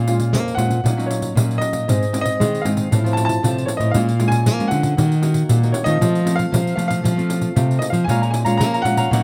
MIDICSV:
0, 0, Header, 1, 7, 480
1, 0, Start_track
1, 0, Key_signature, -5, "minor"
1, 0, Tempo, 516796
1, 1754, Time_signature, 4, 2, 24, 8
1, 8574, End_track
2, 0, Start_track
2, 0, Title_t, "Cavaquinho"
2, 0, Program_c, 0, 24
2, 7512, Note_on_c, 0, 68, 67
2, 7516, Note_on_c, 0, 73, 69
2, 7521, Note_on_c, 0, 77, 82
2, 7529, Note_on_c, 0, 82, 83
2, 7620, Note_off_c, 0, 82, 0
2, 7622, Note_off_c, 0, 68, 0
2, 7624, Note_off_c, 0, 73, 0
2, 7626, Note_off_c, 0, 77, 0
2, 7631, Note_on_c, 0, 82, 44
2, 7639, Note_on_c, 0, 77, 43
2, 7645, Note_on_c, 0, 73, 32
2, 7736, Note_off_c, 0, 73, 0
2, 7738, Note_off_c, 0, 82, 0
2, 7739, Note_off_c, 0, 77, 0
2, 7845, Note_on_c, 0, 82, 75
2, 7853, Note_on_c, 0, 77, 68
2, 7856, Note_on_c, 0, 73, 54
2, 8089, Note_off_c, 0, 82, 0
2, 8092, Note_off_c, 0, 77, 0
2, 8094, Note_off_c, 0, 73, 0
2, 8116, Note_on_c, 0, 82, 50
2, 8127, Note_on_c, 0, 77, 45
2, 8131, Note_on_c, 0, 73, 40
2, 8324, Note_off_c, 0, 82, 0
2, 8330, Note_off_c, 0, 77, 0
2, 8335, Note_on_c, 0, 82, 62
2, 8339, Note_off_c, 0, 73, 0
2, 8341, Note_on_c, 0, 77, 66
2, 8350, Note_on_c, 0, 73, 62
2, 8454, Note_off_c, 0, 82, 0
2, 8457, Note_off_c, 0, 77, 0
2, 8461, Note_off_c, 0, 73, 0
2, 8480, Note_on_c, 0, 63, 65
2, 8485, Note_on_c, 0, 70, 67
2, 8486, Note_on_c, 0, 73, 73
2, 8491, Note_on_c, 0, 78, 74
2, 8574, Note_off_c, 0, 63, 0
2, 8574, Note_off_c, 0, 70, 0
2, 8574, Note_off_c, 0, 73, 0
2, 8574, Note_off_c, 0, 78, 0
2, 8574, End_track
3, 0, Start_track
3, 0, Title_t, "Grand piano"
3, 0, Program_c, 1, 0
3, 0, Note_on_c, 1, 77, 86
3, 507, Note_on_c, 1, 78, 93
3, 555, Note_off_c, 1, 77, 0
3, 975, Note_off_c, 1, 78, 0
3, 987, Note_on_c, 1, 73, 80
3, 1455, Note_off_c, 1, 73, 0
3, 1467, Note_on_c, 1, 75, 104
3, 2042, Note_off_c, 1, 75, 0
3, 2056, Note_on_c, 1, 75, 104
3, 2428, Note_on_c, 1, 77, 89
3, 2456, Note_off_c, 1, 75, 0
3, 2908, Note_on_c, 1, 81, 87
3, 2945, Note_off_c, 1, 77, 0
3, 3004, Note_off_c, 1, 81, 0
3, 3018, Note_on_c, 1, 81, 104
3, 3396, Note_on_c, 1, 73, 82
3, 3417, Note_off_c, 1, 81, 0
3, 3442, Note_off_c, 1, 73, 0
3, 3502, Note_on_c, 1, 75, 90
3, 3635, Note_on_c, 1, 77, 93
3, 3651, Note_off_c, 1, 75, 0
3, 3974, Note_on_c, 1, 80, 119
3, 4024, Note_off_c, 1, 77, 0
3, 4335, Note_off_c, 1, 80, 0
3, 4344, Note_on_c, 1, 78, 98
3, 5315, Note_on_c, 1, 73, 81
3, 5357, Note_off_c, 1, 78, 0
3, 5426, Note_on_c, 1, 75, 107
3, 5457, Note_off_c, 1, 73, 0
3, 5893, Note_off_c, 1, 75, 0
3, 5903, Note_on_c, 1, 77, 115
3, 6260, Note_off_c, 1, 77, 0
3, 6274, Note_on_c, 1, 77, 85
3, 6374, Note_off_c, 1, 77, 0
3, 6388, Note_on_c, 1, 77, 107
3, 7212, Note_off_c, 1, 77, 0
3, 7234, Note_on_c, 1, 75, 89
3, 7280, Note_off_c, 1, 75, 0
3, 7337, Note_on_c, 1, 77, 89
3, 7471, Note_on_c, 1, 80, 99
3, 7474, Note_off_c, 1, 77, 0
3, 7700, Note_off_c, 1, 80, 0
3, 7714, Note_on_c, 1, 80, 84
3, 7772, Note_off_c, 1, 80, 0
3, 7964, Note_on_c, 1, 82, 104
3, 8191, Note_on_c, 1, 78, 114
3, 8200, Note_off_c, 1, 82, 0
3, 8574, Note_off_c, 1, 78, 0
3, 8574, End_track
4, 0, Start_track
4, 0, Title_t, "Nylon-string guitar"
4, 0, Program_c, 2, 24
4, 0, Note_on_c, 2, 46, 54
4, 68, Note_on_c, 2, 56, 51
4, 75, Note_on_c, 2, 61, 63
4, 80, Note_on_c, 2, 65, 66
4, 285, Note_off_c, 2, 46, 0
4, 305, Note_on_c, 2, 41, 60
4, 512, Note_off_c, 2, 56, 0
4, 516, Note_off_c, 2, 61, 0
4, 519, Note_off_c, 2, 65, 0
4, 527, Note_on_c, 2, 56, 63
4, 532, Note_on_c, 2, 61, 55
4, 538, Note_on_c, 2, 65, 70
4, 695, Note_off_c, 2, 56, 0
4, 698, Note_off_c, 2, 61, 0
4, 699, Note_off_c, 2, 65, 0
4, 765, Note_off_c, 2, 41, 0
4, 780, Note_on_c, 2, 46, 59
4, 783, Note_on_c, 2, 54, 54
4, 784, Note_on_c, 2, 61, 59
4, 789, Note_on_c, 2, 63, 71
4, 860, Note_off_c, 2, 54, 0
4, 861, Note_off_c, 2, 61, 0
4, 863, Note_off_c, 2, 63, 0
4, 902, Note_on_c, 2, 54, 63
4, 906, Note_on_c, 2, 61, 65
4, 910, Note_on_c, 2, 63, 73
4, 1229, Note_off_c, 2, 54, 0
4, 1232, Note_off_c, 2, 61, 0
4, 1234, Note_off_c, 2, 63, 0
4, 1243, Note_off_c, 2, 46, 0
4, 1266, Note_on_c, 2, 46, 60
4, 1269, Note_on_c, 2, 54, 60
4, 1274, Note_on_c, 2, 61, 66
4, 1274, Note_on_c, 2, 63, 62
4, 1712, Note_off_c, 2, 54, 0
4, 1713, Note_off_c, 2, 61, 0
4, 1715, Note_off_c, 2, 63, 0
4, 1726, Note_off_c, 2, 46, 0
4, 1743, Note_on_c, 2, 44, 57
4, 1746, Note_on_c, 2, 56, 54
4, 1750, Note_on_c, 2, 60, 63
4, 1754, Note_on_c, 2, 63, 63
4, 1890, Note_off_c, 2, 56, 0
4, 1893, Note_off_c, 2, 60, 0
4, 1895, Note_off_c, 2, 63, 0
4, 1975, Note_on_c, 2, 56, 52
4, 1980, Note_on_c, 2, 60, 60
4, 1981, Note_on_c, 2, 63, 65
4, 2205, Note_off_c, 2, 44, 0
4, 2232, Note_on_c, 2, 51, 62
4, 2426, Note_off_c, 2, 56, 0
4, 2427, Note_off_c, 2, 60, 0
4, 2428, Note_off_c, 2, 63, 0
4, 2452, Note_on_c, 2, 56, 61
4, 2457, Note_on_c, 2, 60, 61
4, 2461, Note_on_c, 2, 63, 64
4, 2683, Note_off_c, 2, 56, 0
4, 2685, Note_off_c, 2, 60, 0
4, 2688, Note_off_c, 2, 51, 0
4, 2688, Note_off_c, 2, 63, 0
4, 2704, Note_on_c, 2, 45, 60
4, 2707, Note_on_c, 2, 53, 61
4, 2712, Note_on_c, 2, 60, 55
4, 2720, Note_on_c, 2, 65, 70
4, 2781, Note_off_c, 2, 53, 0
4, 2782, Note_off_c, 2, 60, 0
4, 2783, Note_off_c, 2, 65, 0
4, 2823, Note_on_c, 2, 53, 68
4, 2830, Note_on_c, 2, 60, 62
4, 2832, Note_on_c, 2, 65, 69
4, 3149, Note_off_c, 2, 53, 0
4, 3153, Note_off_c, 2, 60, 0
4, 3153, Note_off_c, 2, 65, 0
4, 3166, Note_off_c, 2, 45, 0
4, 3178, Note_on_c, 2, 45, 58
4, 3185, Note_on_c, 2, 53, 63
4, 3187, Note_on_c, 2, 60, 63
4, 3193, Note_on_c, 2, 65, 66
4, 3630, Note_off_c, 2, 53, 0
4, 3632, Note_off_c, 2, 60, 0
4, 3633, Note_off_c, 2, 65, 0
4, 3641, Note_off_c, 2, 45, 0
4, 3658, Note_on_c, 2, 46, 54
4, 3662, Note_on_c, 2, 56, 61
4, 3663, Note_on_c, 2, 61, 64
4, 3670, Note_on_c, 2, 65, 64
4, 3807, Note_off_c, 2, 61, 0
4, 3808, Note_off_c, 2, 56, 0
4, 3812, Note_off_c, 2, 65, 0
4, 3894, Note_on_c, 2, 56, 62
4, 3897, Note_on_c, 2, 61, 60
4, 3904, Note_on_c, 2, 65, 63
4, 4122, Note_off_c, 2, 46, 0
4, 4128, Note_off_c, 2, 56, 0
4, 4130, Note_off_c, 2, 61, 0
4, 4132, Note_off_c, 2, 65, 0
4, 4142, Note_on_c, 2, 53, 60
4, 4264, Note_on_c, 2, 56, 61
4, 4264, Note_on_c, 2, 61, 57
4, 4273, Note_on_c, 2, 65, 74
4, 4589, Note_off_c, 2, 56, 0
4, 4589, Note_off_c, 2, 61, 0
4, 4594, Note_off_c, 2, 65, 0
4, 4602, Note_off_c, 2, 53, 0
4, 4616, Note_on_c, 2, 51, 58
4, 4617, Note_on_c, 2, 58, 59
4, 4623, Note_on_c, 2, 63, 66
4, 4623, Note_on_c, 2, 66, 67
4, 4765, Note_off_c, 2, 58, 0
4, 4765, Note_off_c, 2, 63, 0
4, 4768, Note_off_c, 2, 66, 0
4, 4843, Note_on_c, 2, 58, 60
4, 4851, Note_on_c, 2, 63, 60
4, 4856, Note_on_c, 2, 66, 66
4, 5081, Note_off_c, 2, 51, 0
4, 5115, Note_on_c, 2, 46, 60
4, 5179, Note_off_c, 2, 58, 0
4, 5183, Note_off_c, 2, 63, 0
4, 5184, Note_off_c, 2, 66, 0
4, 5232, Note_on_c, 2, 58, 63
4, 5236, Note_on_c, 2, 63, 59
4, 5239, Note_on_c, 2, 66, 71
4, 5433, Note_off_c, 2, 58, 0
4, 5434, Note_off_c, 2, 63, 0
4, 5437, Note_off_c, 2, 66, 0
4, 5437, Note_on_c, 2, 57, 59
4, 5441, Note_on_c, 2, 60, 65
4, 5447, Note_on_c, 2, 65, 67
4, 5569, Note_off_c, 2, 46, 0
4, 5582, Note_on_c, 2, 53, 55
4, 5775, Note_off_c, 2, 57, 0
4, 5778, Note_off_c, 2, 60, 0
4, 5779, Note_off_c, 2, 65, 0
4, 5802, Note_on_c, 2, 57, 59
4, 5804, Note_on_c, 2, 60, 60
4, 5809, Note_on_c, 2, 65, 65
4, 6042, Note_off_c, 2, 53, 0
4, 6051, Note_on_c, 2, 48, 61
4, 6125, Note_off_c, 2, 57, 0
4, 6126, Note_off_c, 2, 60, 0
4, 6129, Note_off_c, 2, 65, 0
4, 6278, Note_on_c, 2, 57, 60
4, 6281, Note_on_c, 2, 60, 58
4, 6288, Note_on_c, 2, 65, 69
4, 6517, Note_off_c, 2, 48, 0
4, 6525, Note_on_c, 2, 53, 56
4, 6616, Note_off_c, 2, 57, 0
4, 6617, Note_off_c, 2, 60, 0
4, 6621, Note_off_c, 2, 65, 0
4, 6658, Note_on_c, 2, 57, 64
4, 6664, Note_on_c, 2, 60, 63
4, 6668, Note_on_c, 2, 65, 72
4, 6986, Note_off_c, 2, 57, 0
4, 6989, Note_off_c, 2, 60, 0
4, 6991, Note_off_c, 2, 65, 0
4, 6994, Note_off_c, 2, 53, 0
4, 7017, Note_on_c, 2, 48, 62
4, 7021, Note_on_c, 2, 57, 62
4, 7026, Note_on_c, 2, 60, 57
4, 7026, Note_on_c, 2, 65, 71
4, 7335, Note_off_c, 2, 57, 0
4, 7337, Note_off_c, 2, 60, 0
4, 7337, Note_off_c, 2, 65, 0
4, 7480, Note_off_c, 2, 48, 0
4, 7511, Note_on_c, 2, 46, 57
4, 7516, Note_on_c, 2, 56, 60
4, 7518, Note_on_c, 2, 61, 55
4, 7523, Note_on_c, 2, 65, 64
4, 7835, Note_off_c, 2, 56, 0
4, 7837, Note_off_c, 2, 61, 0
4, 7838, Note_off_c, 2, 65, 0
4, 7850, Note_on_c, 2, 56, 72
4, 7857, Note_on_c, 2, 61, 69
4, 7859, Note_on_c, 2, 65, 75
4, 7967, Note_off_c, 2, 46, 0
4, 7980, Note_on_c, 2, 53, 58
4, 8183, Note_off_c, 2, 56, 0
4, 8185, Note_off_c, 2, 61, 0
4, 8187, Note_off_c, 2, 65, 0
4, 8214, Note_on_c, 2, 56, 60
4, 8222, Note_on_c, 2, 61, 66
4, 8224, Note_on_c, 2, 65, 67
4, 8425, Note_off_c, 2, 56, 0
4, 8427, Note_off_c, 2, 61, 0
4, 8429, Note_off_c, 2, 65, 0
4, 8442, Note_off_c, 2, 53, 0
4, 8455, Note_on_c, 2, 46, 58
4, 8458, Note_on_c, 2, 54, 63
4, 8463, Note_on_c, 2, 61, 60
4, 8469, Note_on_c, 2, 63, 58
4, 8574, Note_off_c, 2, 46, 0
4, 8574, Note_off_c, 2, 54, 0
4, 8574, Note_off_c, 2, 61, 0
4, 8574, Note_off_c, 2, 63, 0
4, 8574, End_track
5, 0, Start_track
5, 0, Title_t, "Nylon-string guitar"
5, 0, Program_c, 3, 24
5, 0, Note_on_c, 3, 46, 99
5, 306, Note_on_c, 3, 58, 90
5, 310, Note_off_c, 3, 46, 0
5, 514, Note_off_c, 3, 58, 0
5, 532, Note_on_c, 3, 46, 83
5, 745, Note_off_c, 3, 46, 0
5, 778, Note_on_c, 3, 46, 90
5, 1193, Note_off_c, 3, 46, 0
5, 1259, Note_on_c, 3, 46, 90
5, 1469, Note_off_c, 3, 46, 0
5, 1604, Note_on_c, 3, 46, 81
5, 1719, Note_off_c, 3, 46, 0
5, 1750, Note_on_c, 3, 44, 88
5, 2231, Note_off_c, 3, 44, 0
5, 2231, Note_on_c, 3, 56, 84
5, 2436, Note_off_c, 3, 56, 0
5, 2461, Note_on_c, 3, 44, 93
5, 2670, Note_off_c, 3, 44, 0
5, 2712, Note_on_c, 3, 45, 87
5, 3120, Note_off_c, 3, 45, 0
5, 3190, Note_on_c, 3, 48, 85
5, 3395, Note_off_c, 3, 48, 0
5, 3528, Note_on_c, 3, 45, 92
5, 3640, Note_off_c, 3, 45, 0
5, 3672, Note_on_c, 3, 46, 93
5, 4151, Note_on_c, 3, 58, 85
5, 4152, Note_off_c, 3, 46, 0
5, 4355, Note_off_c, 3, 58, 0
5, 4383, Note_on_c, 3, 50, 91
5, 4590, Note_off_c, 3, 50, 0
5, 4629, Note_on_c, 3, 51, 101
5, 5038, Note_off_c, 3, 51, 0
5, 5110, Note_on_c, 3, 46, 88
5, 5314, Note_off_c, 3, 46, 0
5, 5446, Note_on_c, 3, 51, 89
5, 5559, Note_off_c, 3, 51, 0
5, 5585, Note_on_c, 3, 53, 94
5, 5996, Note_off_c, 3, 53, 0
5, 6060, Note_on_c, 3, 53, 86
5, 6268, Note_off_c, 3, 53, 0
5, 6291, Note_on_c, 3, 53, 85
5, 6504, Note_off_c, 3, 53, 0
5, 6540, Note_on_c, 3, 53, 90
5, 6953, Note_off_c, 3, 53, 0
5, 7024, Note_on_c, 3, 48, 87
5, 7231, Note_off_c, 3, 48, 0
5, 7361, Note_on_c, 3, 53, 80
5, 7476, Note_off_c, 3, 53, 0
5, 7502, Note_on_c, 3, 46, 92
5, 7985, Note_on_c, 3, 58, 88
5, 7987, Note_off_c, 3, 46, 0
5, 8192, Note_off_c, 3, 58, 0
5, 8213, Note_on_c, 3, 46, 94
5, 8425, Note_off_c, 3, 46, 0
5, 8465, Note_on_c, 3, 46, 97
5, 8574, Note_off_c, 3, 46, 0
5, 8574, End_track
6, 0, Start_track
6, 0, Title_t, "Muted cavaquinho strokes"
6, 7743, Note_on_c, 9, 29, 40
6, 7836, Note_off_c, 9, 29, 0
6, 8574, End_track
7, 0, Start_track
7, 0, Title_t, "Pandeiro"
7, 70, Note_on_c, 9, 54, 66
7, 163, Note_off_c, 9, 54, 0
7, 182, Note_on_c, 9, 54, 55
7, 275, Note_off_c, 9, 54, 0
7, 320, Note_on_c, 9, 54, 83
7, 413, Note_off_c, 9, 54, 0
7, 445, Note_on_c, 9, 54, 34
7, 538, Note_off_c, 9, 54, 0
7, 543, Note_on_c, 9, 54, 71
7, 636, Note_off_c, 9, 54, 0
7, 655, Note_on_c, 9, 54, 58
7, 748, Note_off_c, 9, 54, 0
7, 796, Note_on_c, 9, 54, 77
7, 889, Note_off_c, 9, 54, 0
7, 924, Note_on_c, 9, 54, 37
7, 1017, Note_off_c, 9, 54, 0
7, 1027, Note_on_c, 9, 54, 70
7, 1120, Note_off_c, 9, 54, 0
7, 1135, Note_on_c, 9, 54, 56
7, 1228, Note_off_c, 9, 54, 0
7, 1275, Note_on_c, 9, 54, 85
7, 1368, Note_off_c, 9, 54, 0
7, 1401, Note_on_c, 9, 54, 34
7, 1494, Note_off_c, 9, 54, 0
7, 1500, Note_on_c, 9, 54, 72
7, 1593, Note_off_c, 9, 54, 0
7, 1608, Note_on_c, 9, 54, 55
7, 1701, Note_off_c, 9, 54, 0
7, 1755, Note_on_c, 9, 54, 81
7, 1848, Note_off_c, 9, 54, 0
7, 1882, Note_on_c, 9, 54, 36
7, 1975, Note_off_c, 9, 54, 0
7, 1987, Note_on_c, 9, 54, 71
7, 2080, Note_off_c, 9, 54, 0
7, 2095, Note_on_c, 9, 54, 59
7, 2188, Note_off_c, 9, 54, 0
7, 2240, Note_on_c, 9, 54, 79
7, 2333, Note_off_c, 9, 54, 0
7, 2365, Note_on_c, 9, 54, 33
7, 2458, Note_off_c, 9, 54, 0
7, 2466, Note_on_c, 9, 54, 67
7, 2559, Note_off_c, 9, 54, 0
7, 2572, Note_on_c, 9, 54, 59
7, 2665, Note_off_c, 9, 54, 0
7, 2714, Note_on_c, 9, 54, 80
7, 2807, Note_off_c, 9, 54, 0
7, 2845, Note_on_c, 9, 54, 36
7, 2938, Note_off_c, 9, 54, 0
7, 2946, Note_on_c, 9, 54, 70
7, 3039, Note_off_c, 9, 54, 0
7, 3058, Note_on_c, 9, 54, 63
7, 3151, Note_off_c, 9, 54, 0
7, 3198, Note_on_c, 9, 54, 82
7, 3291, Note_off_c, 9, 54, 0
7, 3329, Note_on_c, 9, 54, 36
7, 3421, Note_off_c, 9, 54, 0
7, 3421, Note_on_c, 9, 54, 75
7, 3514, Note_off_c, 9, 54, 0
7, 3533, Note_on_c, 9, 54, 55
7, 3626, Note_off_c, 9, 54, 0
7, 3663, Note_on_c, 9, 54, 83
7, 3756, Note_off_c, 9, 54, 0
7, 3795, Note_on_c, 9, 54, 35
7, 3887, Note_off_c, 9, 54, 0
7, 3898, Note_on_c, 9, 54, 69
7, 3991, Note_off_c, 9, 54, 0
7, 4010, Note_on_c, 9, 54, 61
7, 4103, Note_off_c, 9, 54, 0
7, 4144, Note_on_c, 9, 54, 84
7, 4237, Note_off_c, 9, 54, 0
7, 4274, Note_on_c, 9, 54, 32
7, 4367, Note_off_c, 9, 54, 0
7, 4375, Note_on_c, 9, 54, 65
7, 4468, Note_off_c, 9, 54, 0
7, 4489, Note_on_c, 9, 54, 58
7, 4582, Note_off_c, 9, 54, 0
7, 4628, Note_on_c, 9, 54, 79
7, 4721, Note_off_c, 9, 54, 0
7, 4752, Note_on_c, 9, 54, 34
7, 4845, Note_off_c, 9, 54, 0
7, 4854, Note_on_c, 9, 54, 66
7, 4947, Note_off_c, 9, 54, 0
7, 4962, Note_on_c, 9, 54, 54
7, 5054, Note_off_c, 9, 54, 0
7, 5102, Note_on_c, 9, 54, 83
7, 5195, Note_off_c, 9, 54, 0
7, 5233, Note_on_c, 9, 54, 36
7, 5326, Note_off_c, 9, 54, 0
7, 5331, Note_on_c, 9, 54, 76
7, 5424, Note_off_c, 9, 54, 0
7, 5442, Note_on_c, 9, 54, 59
7, 5535, Note_off_c, 9, 54, 0
7, 5591, Note_on_c, 9, 54, 82
7, 5684, Note_off_c, 9, 54, 0
7, 5714, Note_on_c, 9, 54, 37
7, 5807, Note_off_c, 9, 54, 0
7, 5821, Note_on_c, 9, 54, 70
7, 5914, Note_off_c, 9, 54, 0
7, 5936, Note_on_c, 9, 54, 55
7, 6029, Note_off_c, 9, 54, 0
7, 6073, Note_on_c, 9, 54, 88
7, 6166, Note_off_c, 9, 54, 0
7, 6198, Note_on_c, 9, 54, 34
7, 6291, Note_off_c, 9, 54, 0
7, 6302, Note_on_c, 9, 54, 62
7, 6395, Note_off_c, 9, 54, 0
7, 6413, Note_on_c, 9, 54, 60
7, 6506, Note_off_c, 9, 54, 0
7, 6550, Note_on_c, 9, 54, 84
7, 6643, Note_off_c, 9, 54, 0
7, 6677, Note_on_c, 9, 54, 35
7, 6770, Note_off_c, 9, 54, 0
7, 6779, Note_on_c, 9, 54, 69
7, 6872, Note_off_c, 9, 54, 0
7, 6887, Note_on_c, 9, 54, 56
7, 6980, Note_off_c, 9, 54, 0
7, 7026, Note_on_c, 9, 54, 79
7, 7119, Note_off_c, 9, 54, 0
7, 7159, Note_on_c, 9, 54, 34
7, 7252, Note_off_c, 9, 54, 0
7, 7262, Note_on_c, 9, 54, 67
7, 7355, Note_off_c, 9, 54, 0
7, 7370, Note_on_c, 9, 54, 56
7, 7463, Note_off_c, 9, 54, 0
7, 7514, Note_on_c, 9, 54, 78
7, 7607, Note_off_c, 9, 54, 0
7, 7643, Note_on_c, 9, 54, 37
7, 7736, Note_off_c, 9, 54, 0
7, 7743, Note_on_c, 9, 54, 69
7, 7836, Note_off_c, 9, 54, 0
7, 7857, Note_on_c, 9, 54, 59
7, 7950, Note_off_c, 9, 54, 0
7, 7995, Note_on_c, 9, 54, 89
7, 8087, Note_off_c, 9, 54, 0
7, 8120, Note_on_c, 9, 54, 33
7, 8213, Note_off_c, 9, 54, 0
7, 8223, Note_on_c, 9, 54, 66
7, 8315, Note_off_c, 9, 54, 0
7, 8334, Note_on_c, 9, 54, 61
7, 8427, Note_off_c, 9, 54, 0
7, 8480, Note_on_c, 9, 54, 77
7, 8573, Note_off_c, 9, 54, 0
7, 8574, End_track
0, 0, End_of_file